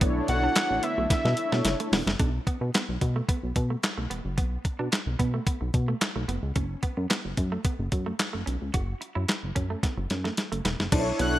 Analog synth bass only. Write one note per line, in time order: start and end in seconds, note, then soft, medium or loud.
0.01 0.21 B1 loud
0.29 0.49 B1 loud
0.70 0.80 A1 medium
0.98 1.07 B1 medium
1.25 1.34 B2 loud
1.52 1.62 B2 loud
1.65 1.76 F#1 loud
1.92 2.03 E1 medium
2.06 2.16 F#1 medium
2.19 2.40 B1 loud
2.61 2.71 B2 loud
2.89 2.98 B1 medium
3.01 3.21 B2 loud
3.43 3.53 B1 medium
3.56 3.76 B2 loud
3.98 4.07 B1 medium
4.11 4.21 E1 medium
4.25 4.39 F#1 medium
4.38 4.58 B1 loud
4.80 4.89 B2 medium
5.06 5.16 B1 loud
5.20 5.40 B2 medium
5.61 5.71 B1 loud
5.74 5.94 B2 loud
6.16 6.25 B1 medium
6.28 6.39 F#1 loud
6.43 6.52 C#2 medium
6.56 6.76 F#1 loud
6.97 7.07 F#2 loud
7.25 7.34 F#1 medium
7.38 7.58 F#2 medium
7.79 7.89 F#1 loud
7.92 8.12 F#2 loud
8.34 8.44 F#1 medium
8.47 8.58 B1 medium
8.62 8.71 C#2 medium
8.74 8.94 F#1 loud
9.16 9.25 F#2 loud
9.43 9.53 F#1 medium
9.56 9.76 F#2 loud
9.98 10.07 F#1 loud
10.11 10.31 F#2 loud
10.52 10.61 F#1 medium
10.65 10.76 E1 medium
10.79 10.89 F#1 medium
10.92 11.12 B1 loud
11.20 11.39 B1 loud